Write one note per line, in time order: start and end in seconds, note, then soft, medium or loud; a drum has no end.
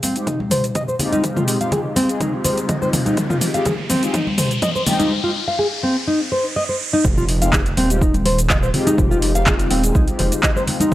0.00 0.15 C4 loud
0.00 open hi-hat medium
0.00 riser medium
0.00 high conga medium
0.00 shaker medium
0.15 0.29 G#3 medium
0.15 0.29 C4 medium
0.15 0.29 D#4 medium
0.15 0.29 F4 medium
0.15 0.29 G4 medium
0.15 closed hi-hat soft
0.15 shaker soft
0.27 0.39 D#4 medium
0.27 kick loud
0.27 closed hi-hat medium
0.27 mid tom medium
0.27 shaker medium
0.40 high conga loud
0.50 0.64 C5 medium
0.50 open hi-hat medium
0.50 mid tom medium
0.50 high conga medium
0.50 shaker medium
0.64 closed hi-hat soft
0.64 shaker soft
0.75 0.82 D#5 medium
0.75 kick loud
0.75 closed hi-hat medium
0.75 mid tom medium
0.75 shaker medium
0.88 0.95 C5 medium
0.88 shaker soft
0.99 1.58 G#3 medium
0.99 1.58 C4 medium
0.99 1.58 D#4 medium
0.99 1.58 F4 medium
0.99 1.58 G4 loud
0.99 open hi-hat medium
0.99 low conga medium
0.99 shaker medium
1.12 1.23 D#4 loud
1.12 closed hi-hat soft
1.12 high conga medium
1.12 shaker soft
1.24 kick loud
1.24 closed hi-hat medium
1.24 mid tom medium
1.24 shaker medium
1.37 1.43 F4 loud
1.37 mid tom medium
1.37 shaker soft
1.48 open hi-hat medium
1.48 shaker loud
1.61 2.06 G#3 medium
1.61 2.06 C4 medium
1.61 2.06 D#4 medium
1.61 2.06 F4 medium
1.61 2.06 G4 medium
1.61 1.71 F5 medium
1.61 closed hi-hat soft
1.61 shaker soft
1.72 1.79 G#4 medium
1.72 kick loud
1.72 closed hi-hat medium
1.72 mid tom medium
1.72 low conga loud
1.72 shaker medium
1.96 2.08 C4 loud
1.96 open hi-hat medium
1.96 high conga medium
1.96 shaker medium
2.09 2.30 G#3 medium
2.09 2.30 C4 medium
2.09 2.30 D#4 medium
2.09 2.30 F4 medium
2.09 2.30 G#4 medium
2.09 closed hi-hat soft
2.09 shaker soft
2.20 2.32 D#4 medium
2.20 kick loud
2.20 closed hi-hat medium
2.20 mid tom medium
2.20 high conga medium
2.20 shaker medium
2.33 3.51 G#3 medium
2.33 3.51 C4 medium
2.33 3.51 D#4 medium
2.33 3.51 F4 medium
2.33 3.51 G4 medium
2.44 2.57 C5 medium
2.44 open hi-hat medium
2.44 high conga medium
2.44 low conga loud
2.44 shaker loud
2.58 closed hi-hat soft
2.58 shaker soft
2.69 2.76 D#5 medium
2.69 kick loud
2.69 closed hi-hat medium
2.69 mid tom medium
2.69 low conga medium
2.69 shaker medium
2.82 2.88 C5 medium
2.82 high conga medium
2.82 shaker soft
2.93 open hi-hat medium
2.93 mid tom medium
2.93 low conga loud
2.93 shaker medium
3.06 3.17 D#4 loud
3.06 closed hi-hat soft
3.06 high conga loud
3.06 shaker soft
3.17 kick loud
3.17 closed hi-hat medium
3.17 mid tom medium
3.17 shaker medium
3.30 3.36 F4 loud
3.30 mid tom medium
3.30 shaker soft
3.41 open hi-hat medium
3.41 mid tom medium
3.41 shaker loud
3.54 3.68 G#3 medium
3.54 3.68 C4 medium
3.54 3.68 D#4 medium
3.54 3.68 F4 medium
3.54 3.68 G4 medium
3.54 3.65 F5 medium
3.54 closed hi-hat soft
3.54 shaker soft
3.65 3.73 G#4 medium
3.65 kick loud
3.65 closed hi-hat medium
3.65 mid tom medium
3.65 low conga loud
3.65 shaker medium
3.90 4.02 C4 loud
3.90 open hi-hat medium
3.90 mid tom medium
3.90 high conga medium
3.90 shaker loud
4.03 4.16 G#3 medium
4.03 4.16 C4 medium
4.03 4.16 D#4 medium
4.03 4.16 F4 medium
4.03 4.16 G4 medium
4.03 closed hi-hat soft
4.03 shaker soft
4.14 4.26 D#4 medium
4.14 kick loud
4.14 closed hi-hat medium
4.14 mid tom medium
4.14 shaker medium
4.27 high conga loud
4.38 4.51 C5 medium
4.38 open hi-hat medium
4.38 mid tom medium
4.38 high conga medium
4.38 shaker loud
4.51 closed hi-hat soft
4.51 shaker soft
4.62 4.70 D#5 medium
4.62 kick loud
4.62 closed hi-hat medium
4.62 mid tom medium
4.62 shaker medium
4.76 4.82 C5 medium
4.76 shaker soft
4.87 5.11 G#3 loud
4.87 5.11 C4 medium
4.87 5.11 D#4 medium
4.87 5.11 F4 medium
4.87 5.11 G4 loud
4.87 open hi-hat medium
4.87 mid tom medium
4.87 low conga medium
4.87 shaker loud
5.00 5.10 D#4 loud
5.00 closed hi-hat soft
5.00 high conga loud
5.00 shaker soft
5.24 5.30 F4 loud
5.48 5.58 F5 medium
5.59 5.66 G#4 medium
5.83 5.95 C4 loud
6.08 6.19 D#4 medium
6.32 6.44 C5 medium
6.56 6.63 D#5 medium
6.69 6.75 C5 medium
6.93 7.04 D#4 loud
7.05 7.74 F1 loud
7.05 kick loud
7.05 mid tom medium
7.05 shaker medium
7.18 7.24 F4 loud
7.18 shaker soft
7.29 open hi-hat loud
7.42 7.55 G#3 medium
7.42 7.55 C4 medium
7.42 7.55 D#4 medium
7.42 7.55 F4 medium
7.42 7.55 G4 medium
7.42 7.52 F5 medium
7.42 closed hi-hat medium
7.42 shaker medium
7.53 7.60 G#4 medium
7.53 kick loud
7.53 clap loud
7.53 low conga loud
7.53 shaker medium
7.66 closed hi-hat soft
7.66 shaker soft
7.77 8.71 D#1 loud
7.77 7.89 C4 loud
7.77 open hi-hat medium
7.77 high conga medium
7.90 8.03 G#3 medium
7.90 8.03 C4 medium
7.90 8.03 D#4 medium
7.90 8.03 F4 medium
7.90 8.03 G4 medium
7.90 closed hi-hat medium
7.90 shaker medium
8.01 8.13 D#4 medium
8.01 kick loud
8.01 shaker medium
8.14 closed hi-hat soft
8.14 high conga loud
8.14 shaker soft
8.26 8.38 C5 medium
8.26 open hi-hat loud
8.26 high conga medium
8.38 closed hi-hat medium
8.38 shaker medium
8.50 8.57 D#5 medium
8.50 kick loud
8.50 clap loud
8.50 mid tom medium
8.50 shaker medium
8.63 8.69 C5 medium
8.63 shaker soft
8.74 9.32 G#3 medium
8.74 9.32 C4 medium
8.74 9.32 D#4 medium
8.74 9.32 F4 medium
8.74 9.32 G4 loud
8.74 open hi-hat medium
8.74 low conga loud
8.87 8.98 D#4 loud
8.87 closed hi-hat medium
8.87 high conga loud
8.87 shaker medium
8.98 9.68 F1 loud
8.98 kick loud
8.98 mid tom medium
8.98 shaker medium
9.11 9.17 F4 loud
9.11 shaker soft
9.22 open hi-hat medium
9.35 9.81 G#3 medium
9.35 9.81 C4 medium
9.35 9.81 D#4 medium
9.35 9.81 F4 medium
9.35 9.81 G4 medium
9.35 9.45 F5 medium
9.35 closed hi-hat medium
9.35 shaker medium
9.46 9.54 G#4 medium
9.46 kick loud
9.46 clap loud
9.46 low conga loud
9.46 shaker medium
9.59 closed hi-hat soft
9.59 shaker soft
9.71 9.91 D#1 loud
9.71 9.82 C4 loud
9.71 open hi-hat medium
9.71 high conga medium
9.84 10.05 G#3 medium
9.84 10.05 C4 medium
9.84 10.05 D#4 medium
9.84 10.05 F4 medium
9.84 10.05 G#4 medium
9.84 closed hi-hat medium
9.84 shaker medium
9.95 10.06 C2 loud
9.95 10.07 D#4 medium
9.95 kick loud
9.95 high conga medium
9.95 shaker medium
10.08 10.94 G#3 medium
10.08 10.94 C4 medium
10.08 10.94 D#4 medium
10.08 10.94 F4 medium
10.08 10.94 G4 medium
10.08 closed hi-hat soft
10.08 shaker soft
10.19 10.30 F1 medium
10.19 10.31 C5 medium
10.19 open hi-hat medium
10.19 high conga medium
10.19 low conga loud
10.32 closed hi-hat medium
10.32 shaker medium
10.43 10.50 D#5 medium
10.43 kick loud
10.43 clap loud
10.43 low conga medium
10.43 shaker medium
10.56 10.62 C5 medium
10.56 high conga medium
10.56 shaker soft
10.67 open hi-hat medium
10.67 low conga medium
10.80 10.91 D#4 loud
10.80 closed hi-hat medium
10.80 high conga loud
10.80 shaker medium